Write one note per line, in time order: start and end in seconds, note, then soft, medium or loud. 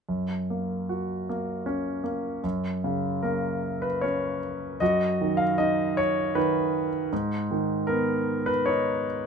0.09 2.39 F#2 soft
0.50 1.28 A#3 soft
0.89 2.40 F#4 soft
1.29 2.02 A#3 soft
1.66 2.42 C#4 soft
2.04 2.42 A#3 soft
2.44 4.77 F#2 soft
2.84 4.38 C#3 soft
3.23 4.77 A#3 soft
3.23 3.84 A#4 soft
3.82 4.03 B4 soft
4.01 4.79 C#4 soft
4.01 4.76 C#5 medium
4.80 7.08 F#2 soft
4.80 5.93 F#4 soft
4.80 5.40 D#5 medium
5.21 6.34 D#3 soft
5.37 5.56 F5 medium
5.58 7.08 D#4 soft
5.58 5.97 D#5 medium
5.97 6.36 C#5 medium
6.35 7.10 D#3 soft
6.35 6.88 B4 medium
7.13 9.27 G#2 soft
7.51 9.05 D#3 soft
7.87 9.27 B3 soft
7.87 8.49 A#4 medium
8.46 8.68 B4 medium
8.66 9.27 D#4 soft
8.66 9.27 C#5 medium